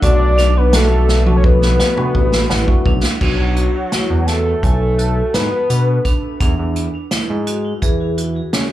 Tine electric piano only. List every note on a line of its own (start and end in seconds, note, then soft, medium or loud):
0.02 0.51 A3 medium
0.02 0.51 D4 medium
0.02 0.51 F#4 medium
0.73 1.10 A3 medium
0.73 1.10 D4 medium
0.73 1.10 F#4 medium
1.26 1.75 A3 medium
1.26 1.75 D4 medium
1.26 1.75 F#4 medium
1.96 2.45 A3 medium
1.96 2.46 D4 medium
1.96 2.46 F#4 medium
2.50 3.17 F#5 medium
2.67 3.04 A3 medium
2.67 3.04 D4 medium
2.67 3.04 F#4 medium